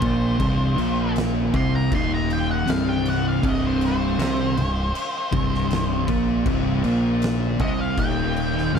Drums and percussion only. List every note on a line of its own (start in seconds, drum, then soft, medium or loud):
0.02 kick loud
0.02 crash medium
0.40 kick loud
0.40 crash medium
0.78 crash medium
1.16 snare loud
1.16 crash medium
1.54 kick loud
1.54 crash medium
1.92 kick medium
1.92 crash medium
2.30 crash medium
2.67 snare loud
2.67 crash medium
3.05 crash medium
3.43 kick loud
3.43 crash medium
3.81 crash medium
4.19 snare loud
4.19 crash medium
4.57 crash medium
4.95 crash medium
5.33 kick loud
5.33 crash medium
5.55 snare soft
5.70 snare loud
5.70 crash medium
6.08 kick loud
6.08 crash medium
6.46 kick loud
6.46 crash medium
6.84 crash medium
7.22 snare loud
7.22 crash medium
7.60 kick loud
7.60 crash medium
7.98 kick loud
7.98 crash medium
8.36 crash medium
8.58 snare soft